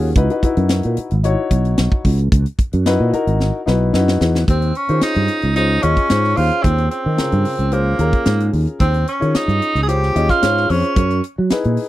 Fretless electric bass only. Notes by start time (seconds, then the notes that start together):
Already playing: D#2
0.16 C#2
0.43 muted fretless electric bass stroke
0.57 F#2
0.85 A#2
0.98 muted fretless electric bass stroke
1.11 G#1
1.51 B1
1.79 B1
2.05 C#2
2.32 C#2
2.58 muted fretless electric bass stroke
2.73 F#2
3.00 A#2
3.13 muted fretless electric bass stroke
3.27 G#1
3.67 B1
3.94 F#2
4.21 E2
4.48 D#2
4.89 D#3
5.02 muted fretless electric bass stroke
5.16 G2
5.43 C#2
5.83 D#2
6.10 G#2
6.37 D#2
6.65 D#2
7.06 D#3
7.19 muted fretless electric bass stroke
7.32 G2
7.59 C#2
7.99 D#2
8.26 G#2
8.53 D#2
8.80 D#2
9.22 D#3
9.35 muted fretless electric bass stroke
9.48 G2
9.75 C#2
10.15 D#2
10.43 G#2
10.70 F2
10.96 F#2
11.38 F#3
11.51 muted fretless electric bass stroke
11.65 A#2